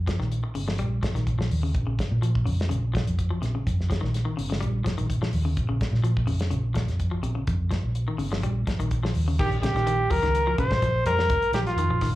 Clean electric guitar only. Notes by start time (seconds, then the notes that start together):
0.08 F3
0.20 D#3
0.44 muted clean electric guitar stroke
0.55 C#3
0.68 F3
0.79 G3
1.03 F3
1.15 D#3
1.39 F3
1.63 C#3
1.87 C#3
2.22 F3
2.45 C#3
2.69 C#3
2.94 F3
3.30 F3
3.42 C3
3.55 C#3
3.90 F3
4.01 D#3
4.25 D#3
4.37 C#3
4.50 C#3
4.61 G3
4.84 F3
4.98 D#3
5.22 F3
5.45 C#3
5.69 C#3
6.04 F3
6.27 C#3
6.51 C#3
6.74 F3
7.11 F3
7.23 C3
7.35 C#3
7.71 F3
8.08 D#3
8.18 C#3
8.32 F3
8.43 G3
8.67 F3
8.80 D#3
9.03 F3
9.28 C#3
9.40 D#3
9.63 C#3
9.76 D#3
9.87 D#3
10.10 F3
10.23 D#3
10.47 F3
10.58 C#3
10.82 F3
11.07 G3
11.55 F3
11.79 D#3
11.91 F3
12.02 D#3